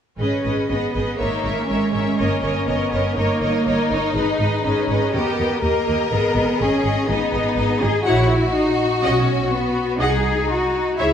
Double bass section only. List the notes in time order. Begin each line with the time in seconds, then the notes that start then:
0.19 G#1
0.45 G#1
0.69 G#1
0.94 G#1
1.20 G#1
1.44 G#1
1.69 G#1
1.94 G#1
2.18 G1
2.43 G1
2.68 G1
2.92 G1
3.17 G1
3.41 G1
3.66 G1
3.91 G1
4.15 G#1
4.40 G#1
4.64 G#1
4.89 G#1
5.14 D#2
5.38 D#2
5.62 D#2
5.87 D#2
6.12 G#1
6.36 G#1
6.61 G#1
6.85 G#1
7.09 G#1
7.33 G#1
7.57 G#1
7.82 G#1
8.06 A#1
9.03 B1
10.01 C2
10.99 C#2